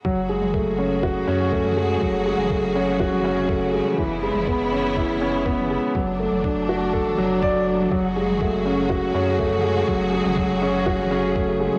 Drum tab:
T2 |---o---------o--|---o-----o-----o|---o---------o--|---o-----o-----o|
BD |o---o---o---o---|o---o---o---o---|o---o---o---o---|o---o---o---o---|

T2 |---o---------o--|---o-----o-----o|
BD |o---o---o---o---|o---o---o---o---|